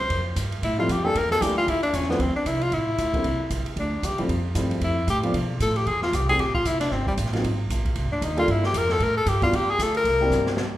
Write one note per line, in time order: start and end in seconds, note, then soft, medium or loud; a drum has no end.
0.00 0.27 C5 medium
0.10 0.35 F2 medium
0.10 kick soft
0.10 ride medium
0.36 0.62 G2 medium
0.36 kick soft
0.36 hi-hat pedal medium
0.36 ride medium
0.52 ride soft
0.62 0.88 A2 medium
0.62 0.78 E4 medium
0.62 kick soft
0.62 ride medium
0.78 0.88 F3 medium
0.78 0.88 G3 medium
0.78 0.88 A3 medium
0.78 0.88 C4 medium
0.78 0.88 E4 medium
0.78 0.93 F4 medium
0.88 1.14 F2 medium
0.88 1.07 G4 medium
0.88 kick soft
0.88 hi-hat pedal medium
0.88 ride medium
1.04 1.14 E3 medium
1.04 1.14 G3 medium
1.04 1.14 A#3 medium
1.04 1.14 D4 medium
1.04 1.14 G4 medium
1.04 1.19 A4 loud
1.15 1.40 E2 medium
1.15 1.31 A#4 medium
1.15 kick soft
1.15 ride medium
1.31 1.43 A4 loud
1.31 snare medium
1.41 1.67 D2 medium
1.41 1.67 E3 medium
1.41 1.67 G3 medium
1.41 1.67 A#3 medium
1.41 1.67 D4 medium
1.41 1.67 E4 medium
1.41 1.57 G4 medium
1.41 kick soft
1.41 hi-hat pedal medium
1.41 ride medium
1.58 1.71 F4 loud
1.67 1.93 C#2 medium
1.67 1.82 E4 medium
1.67 kick soft
1.67 ride medium
1.83 1.97 D4 medium
1.83 ride soft
1.93 2.19 E2 medium
1.93 2.10 C#4 medium
1.93 kick soft
1.93 hi-hat pedal medium
1.93 ride medium
2.02 snare soft
2.09 2.18 D3 medium
2.09 2.18 F3 medium
2.09 2.19 A3 medium
2.09 2.23 B3 medium
2.09 2.19 C4 medium
2.09 2.19 E4 medium
2.09 snare soft
2.19 2.34 D2 medium
2.19 2.35 C4 medium
2.19 kick soft
2.19 ride medium
2.35 2.48 D4 medium
2.35 muted upright bass stroke soft
2.46 2.71 C2 medium
2.46 2.64 E4 medium
2.46 kick soft
2.46 hi-hat pedal soft
2.46 ride medium
2.62 2.75 F4 medium
2.62 ride soft
2.72 2.97 A1 medium
2.72 3.51 E4 medium
2.72 kick soft
2.72 ride medium
2.98 3.23 D2 medium
2.98 kick soft
2.98 hi-hat pedal medium
2.98 ride medium
3.14 3.23 D3 medium
3.14 3.24 G3 medium
3.14 3.24 A#3 medium
3.14 3.24 C4 medium
3.14 3.24 E4 medium
3.14 kick medium
3.14 ride soft
3.24 3.39 C2 medium
3.24 kick soft
3.24 ride medium
3.39 muted upright bass stroke soft
3.50 3.65 A#1 medium
3.50 kick soft
3.50 hi-hat pedal medium
3.50 ride medium
3.66 muted upright bass stroke soft
3.66 ride soft
3.76 4.02 D2 medium
3.76 4.07 D4 medium
3.76 kick soft
3.76 ride medium
4.03 4.12 E2 medium
4.03 4.20 G4 medium
4.03 kick soft
4.03 hi-hat pedal medium
4.03 ride medium
4.11 4.19 C2 medium
4.18 4.28 A#1 medium
4.18 4.28 F3 medium
4.18 4.28 G3 medium
4.18 4.28 A3 medium
4.18 4.28 C4 medium
4.18 4.28 E4 medium
4.18 ride soft
4.28 4.54 F2 medium
4.28 kick soft
4.28 ride medium
4.55 4.80 G2 medium
4.55 4.94 F3 medium
4.55 4.94 G3 medium
4.55 4.94 A3 medium
4.55 4.94 C4 medium
4.55 4.94 E4 medium
4.55 kick soft
4.55 hi-hat pedal medium
4.55 ride medium
4.71 ride soft
4.81 5.07 F2 medium
4.81 5.07 E4 medium
4.81 kick soft
4.81 ride medium
5.07 5.33 A2 medium
5.07 5.19 G4 medium
5.07 kick soft
5.07 hi-hat pedal medium
5.07 ride medium
5.23 5.33 F3 medium
5.23 5.33 A3 medium
5.23 5.33 B3 medium
5.23 5.33 D4 medium
5.23 5.33 F4 medium
5.23 ride soft
5.33 5.59 B2 medium
5.33 kick soft
5.33 ride medium
5.60 5.85 A2 medium
5.60 5.78 A4 medium
5.60 kick soft
5.60 hi-hat pedal medium
5.60 ride medium
5.76 5.89 G4 medium
5.76 ride soft
5.86 6.12 E2 medium
5.86 6.02 G#4 medium
5.86 kick soft
5.86 ride medium
6.02 6.16 F4 medium
6.02 snare soft
6.13 6.38 C2 medium
6.13 6.29 G4 medium
6.13 kick soft
6.13 hi-hat pedal medium
6.13 ride medium
6.29 6.38 G3 medium
6.29 6.38 A3 medium
6.29 6.38 C4 medium
6.29 6.38 E4 medium
6.29 6.38 G4 medium
6.29 6.42 G#4 loud
6.29 ride soft
6.39 6.64 A1 medium
6.39 6.54 G4 medium
6.39 kick soft
6.39 ride medium
6.55 6.68 F4 medium
6.55 kick soft
6.65 6.90 F1 medium
6.65 6.80 E4 medium
6.65 kick soft
6.65 hi-hat pedal medium
6.65 ride medium
6.80 6.93 D4 medium
6.80 snare soft
6.80 ride medium
6.91 7.16 G1 medium
6.91 7.07 C4 medium
6.91 kick soft
6.91 snare soft
7.07 7.14 G3 medium
7.07 kick medium
7.17 7.43 A1 medium
7.17 kick soft
7.17 hi-hat pedal medium
7.17 ride medium
7.26 snare soft
7.33 7.42 F#3 medium
7.33 7.42 A#3 medium
7.33 7.43 C4 medium
7.33 7.43 D#4 medium
7.33 7.43 F4 medium
7.33 snare soft
7.33 ride soft
7.43 7.69 G#1 medium
7.43 kick soft
7.43 ride medium
7.70 7.95 A#1 medium
7.70 kick soft
7.70 hi-hat pedal medium
7.70 ride medium
7.85 kick soft
7.85 ride soft
7.95 8.04 C2 medium
7.95 kick soft
7.95 ride medium
8.04 8.12 G#1 medium
8.12 8.21 F#1 medium
8.12 8.25 D4 medium
8.21 8.47 D#2 medium
8.21 8.38 D#4 medium
8.21 kick soft
8.21 hi-hat pedal medium
8.21 ride medium
8.37 8.47 G3 medium
8.37 8.47 A#3 medium
8.37 8.47 D4 medium
8.37 8.47 F4 medium
8.37 8.53 F4 loud
8.37 8.47 A4 medium
8.37 ride soft
8.48 8.73 G2 medium
8.48 8.65 E4 medium
8.48 kick soft
8.48 ride medium
8.64 8.80 G4 loud
8.64 snare medium
8.74 8.99 F2 medium
8.74 kick soft
8.74 hi-hat pedal medium
8.74 ride medium
8.78 8.93 A#4 medium
8.89 9.04 A4 medium
8.89 snare soft
9.00 9.25 A2 medium
9.00 9.17 A#4 loud
9.00 kick soft
9.00 ride medium
9.17 9.30 A4 medium
9.26 9.52 G2 medium
9.26 9.43 G4 medium
9.26 kick soft
9.26 hi-hat pedal medium
9.26 ride medium
9.42 9.51 G3 medium
9.42 9.52 B3 medium
9.42 9.52 D4 medium
9.42 9.52 E4 medium
9.42 9.57 F4 medium
9.42 9.52 F#4 medium
9.42 kick medium
9.42 ride soft
9.52 9.67 E2 medium
9.52 9.72 G4 medium
9.52 kick soft
9.52 ride medium
9.67 9.84 G#4 loud
9.67 muted upright bass stroke soft
9.79 10.04 D2 medium
9.79 9.96 A4 medium
9.79 kick soft
9.79 hi-hat pedal medium
9.79 ride medium
9.95 10.49 A#4 loud
9.95 ride soft
10.04 10.30 C2 medium
10.04 kick soft
10.04 ride medium
10.21 10.55 A#3 medium
10.21 10.55 C4 medium
10.21 10.55 D4 medium
10.21 10.55 E4 medium
10.21 10.56 G4 medium
10.30 10.56 G2 loud
10.30 snare soft
10.30 hi-hat pedal medium
10.47 snare medium
10.57 snare medium